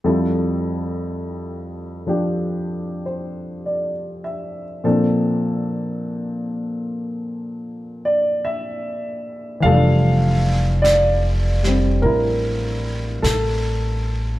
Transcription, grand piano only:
0.04 4.84 F2 soft
0.04 2.05 F3 soft
0.04 4.85 G3 soft
0.04 4.85 E4 soft
0.04 4.83 A4 soft
2.07 4.83 F3 soft
2.07 4.83 D4 soft
2.07 4.86 G4 soft
3.06 3.91 C5 soft
3.66 4.62 D5 soft
4.24 5.10 E5 soft
4.84 9.64 A#2 soft
4.84 9.64 F3 soft
4.84 9.64 C4 soft
4.84 9.64 D4 soft
4.84 9.64 A4 medium
8.05 8.45 D5 medium
8.45 9.68 E5 medium
9.60 14.39 E3 soft
9.60 11.62 G3 soft
9.60 10.87 F5 medium
9.65 14.38 F3 soft
9.65 12.01 A4 medium
9.72 14.39 D4 soft
10.82 11.99 D5 medium
11.63 14.39 G3 soft
11.63 14.39 C4 soft
12.02 14.39 E4 soft
12.02 13.19 A#4 medium
13.22 14.39 A4 medium

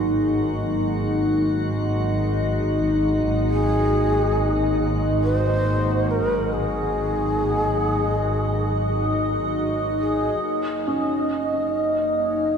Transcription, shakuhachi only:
3.51 4.76 G#4 loud
5.23 6.12 C5 loud
6.11 6.55 A#4 medium
6.53 9.56 G#4 medium
10.00 10.45 G#4 medium
10.43 10.88 A#4 medium
10.86 12.21 D#5 medium
12.19 12.58 C#5 medium

